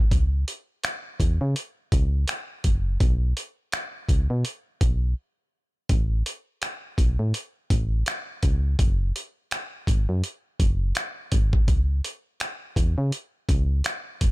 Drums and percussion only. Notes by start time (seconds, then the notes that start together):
0.11 kick, closed hi-hat
0.48 closed hi-hat
0.84 finger snap, closed hi-hat
1.20 kick, closed hi-hat
1.56 closed hi-hat
1.92 kick, closed hi-hat
2.28 finger snap, closed hi-hat
2.64 kick, closed hi-hat
3.00 kick, closed hi-hat
3.37 closed hi-hat
3.72 finger snap, closed hi-hat
4.09 kick, closed hi-hat
4.45 closed hi-hat
4.81 kick, closed hi-hat
5.89 kick, closed hi-hat
6.26 closed hi-hat
6.62 finger snap, closed hi-hat
6.98 kick, closed hi-hat
7.34 closed hi-hat
7.70 kick, closed hi-hat
8.06 finger snap, closed hi-hat
8.43 kick, closed hi-hat
8.79 kick, closed hi-hat
9.16 closed hi-hat
9.51 finger snap, closed hi-hat
9.87 kick, closed hi-hat
10.24 closed hi-hat
10.60 kick, closed hi-hat
10.95 finger snap, closed hi-hat
11.32 kick, closed hi-hat
11.53 kick
11.68 kick, closed hi-hat
12.04 closed hi-hat
12.40 finger snap, closed hi-hat
12.76 kick, closed hi-hat
13.12 closed hi-hat
13.49 kick, closed hi-hat
13.84 finger snap, closed hi-hat
14.21 kick, closed hi-hat